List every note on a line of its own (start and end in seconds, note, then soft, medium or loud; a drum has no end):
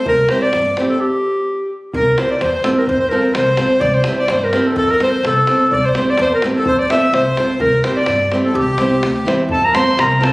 0.06 0.20 C2 loud
0.06 0.28 A#4 medium
0.06 0.32 A#4 loud
0.06 davul low loud
0.29 0.47 C4 medium
0.29 0.47 E4 medium
0.29 0.47 G4 medium
0.29 0.42 C5 medium
0.29 0.44 C5 loud
0.29 davul high medium
0.34 0.48 C5 medium
0.42 0.77 D5 medium
0.42 0.77 D5 loud
0.42 davul high soft
0.53 0.68 G2 loud
0.53 davul high medium
0.66 davul high soft
0.77 0.93 C4 medium
0.77 0.94 E4 medium
0.77 0.94 G4 medium
0.77 0.94 C5 medium
0.77 davul high medium
0.90 1.02 A4 medium
0.90 1.01 A4 medium
0.90 davul high soft
1.00 1.71 G4 medium
1.94 2.08 C2 loud
1.94 2.16 A#4 medium
1.94 2.21 A#4 medium
1.94 davul low medium
2.17 2.34 C4 medium
2.17 2.34 E4 medium
2.17 2.34 G4 medium
2.17 2.30 C5 medium
2.17 2.35 C5 medium
2.17 2.31 C5 medium
2.17 davul high medium
2.29 2.40 D5 medium
2.29 2.44 D5 medium
2.29 davul high soft
2.40 2.56 E2 loud
2.40 2.64 C5 medium
2.40 davul high medium
2.54 davul high soft
2.64 2.80 C4 medium
2.64 2.81 E4 medium
2.64 2.81 G4 medium
2.64 2.70 A4 medium
2.64 2.81 C5 medium
2.64 davul high medium
2.76 2.87 A#4 medium
2.76 2.89 A#4 medium
2.76 davul high soft
2.87 3.03 F2 loud
2.87 2.99 C5 medium
2.87 davul low medium
2.99 3.11 C5 medium
3.09 3.28 C4 medium
3.09 3.28 F4 medium
3.09 3.28 A4 medium
3.09 3.35 A#4 medium
3.09 3.36 A#4 medium
3.09 3.29 C5 medium
3.23 davul high soft
3.34 3.49 C2 loud
3.34 3.82 C5 loud
3.34 3.83 C5 medium
3.34 davul high medium
3.47 davul high soft
3.57 3.74 C4 medium
3.57 3.75 F4 medium
3.57 3.75 A4 medium
3.57 3.75 C5 medium
3.57 davul high medium
3.70 davul high soft
3.80 3.96 C2 loud
3.80 3.94 D5 loud
3.80 3.96 D5 loud
3.80 davul low loud
3.94 4.18 C5 medium
4.04 4.23 C4 medium
4.04 4.23 E4 medium
4.04 4.23 G4 medium
4.04 davul high medium
4.08 4.23 C5 medium
4.16 4.29 D5 medium
4.16 4.32 D5 loud
4.16 davul high soft
4.28 4.44 G2 loud
4.28 4.42 C5 medium
4.28 4.46 C5 loud
4.28 davul high medium
4.42 4.66 A#4 medium
4.42 4.69 A#4 medium
4.42 davul high soft
4.53 4.69 C4 medium
4.53 4.69 E4 medium
4.53 4.70 G4 medium
4.53 4.70 C5 medium
4.53 davul high medium
4.64 4.73 A4 medium
4.64 4.77 A4 medium
4.64 davul high soft
4.75 4.90 F2 loud
4.75 4.87 A4 loud
4.75 4.92 A4 loud
4.75 davul low medium
4.86 4.99 A#4 medium
4.90 5.01 A#4 loud
4.90 davul high soft
5.00 5.17 C4 medium
5.00 5.17 F4 medium
5.00 5.17 A4 medium
5.00 5.23 C5 medium
5.00 5.17 C5 medium
5.00 5.24 C5 loud
5.00 davul high medium
5.23 5.38 C2 loud
5.23 5.68 A4 medium
5.23 5.75 A4 medium
5.23 davul high medium
5.47 5.64 C4 medium
5.47 5.64 F4 medium
5.47 5.64 A4 medium
5.47 5.65 C5 medium
5.47 davul high medium
5.61 davul high soft
5.71 5.85 C2 medium
5.71 5.83 D5 medium
5.71 5.87 D5 loud
5.71 davul low medium
5.82 6.07 C5 medium
5.82 6.12 C5 loud
5.95 6.11 C4 medium
5.95 6.12 E4 medium
5.95 6.12 G4 medium
5.95 6.12 C5 medium
5.95 davul high medium
6.07 6.19 D5 medium
6.07 6.20 D5 loud
6.07 davul high soft
6.18 6.33 E2 loud
6.18 6.30 C5 medium
6.18 davul high medium
6.22 6.32 C5 loud
6.29 6.40 A#4 medium
6.29 davul high soft
6.35 6.45 A#4 medium
6.42 6.59 C4 medium
6.42 6.59 E4 medium
6.42 6.60 G4 medium
6.42 6.60 C5 medium
6.42 davul high medium
6.55 6.65 A4 medium
6.55 6.67 A4 medium
6.55 davul high soft
6.65 6.80 F2 medium
6.65 6.77 C5 loud
6.65 6.80 C5 medium
6.65 davul low loud
6.79 6.92 D5 loud
6.79 6.90 D5 medium
6.90 7.06 C4 medium
6.90 7.06 F4 medium
6.90 7.07 A4 medium
6.90 7.07 C5 medium
6.90 7.16 E5 loud
6.90 7.14 E5 medium
6.90 davul high medium
7.02 davul high soft
7.13 7.27 C2 loud
7.13 7.61 C5 medium
7.13 7.60 C5 loud
7.13 davul high medium
7.25 davul high soft
7.37 7.53 C4 medium
7.37 7.54 F4 medium
7.37 7.54 A4 medium
7.37 7.54 C5 medium
7.37 davul high medium
7.50 davul high soft
7.60 7.74 C2 loud
7.60 7.85 A#4 loud
7.60 7.84 A#4 medium
7.60 davul low loud
7.84 8.01 C4 medium
7.84 8.01 E4 medium
7.84 8.01 G4 medium
7.84 7.96 C5 medium
7.84 7.97 C5 medium
7.84 8.02 C5 medium
7.84 davul high medium
7.96 8.29 D5 loud
7.96 8.31 D5 medium
7.96 davul high soft
8.06 8.22 G2 loud
8.06 davul high medium
8.19 davul high soft
8.32 8.49 C4 medium
8.32 8.49 E4 medium
8.32 8.49 G4 medium
8.32 8.49 C5 medium
8.32 davul high medium
8.44 8.56 A4 medium
8.44 8.55 A4 medium
8.44 davul high soft
8.54 8.69 C2 loud
8.54 9.26 G4 medium
8.54 davul low medium
8.59 9.28 G4 medium
8.68 davul high soft
8.78 9.00 C2 medium
8.78 8.95 C4 medium
8.78 8.96 E4 medium
8.78 8.96 G4 medium
8.78 8.96 C5 medium
8.78 davul high medium
8.92 davul high soft
9.01 9.23 D2 medium
9.01 davul high medium
9.16 davul high soft
9.25 9.47 E2 medium
9.25 9.42 C4 medium
9.25 9.43 E4 medium
9.25 9.43 G4 medium
9.25 9.43 C5 medium
9.25 davul high medium
9.40 davul high soft
9.48 9.77 F2 medium
9.48 9.62 A4 medium
9.48 9.66 A5 loud
9.48 davul low loud
9.63 9.75 A#4 medium
9.63 9.77 A#5 medium
9.63 davul high soft
9.74 9.90 C4 medium
9.74 9.90 F4 medium
9.74 9.91 A4 medium
9.74 9.97 C5 medium
9.74 9.91 C5 medium
9.74 10.02 C6 loud
9.74 davul high medium
9.86 davul high soft
9.97 10.26 C2 loud
9.97 10.23 A#4 medium
9.97 10.25 A#5 medium
9.97 davul high medium
10.12 davul high soft
10.21 10.33 C4 medium
10.21 10.33 F4 medium
10.21 10.33 A4 medium
10.21 10.33 C5 medium
10.21 10.33 A5 medium
10.21 davul high medium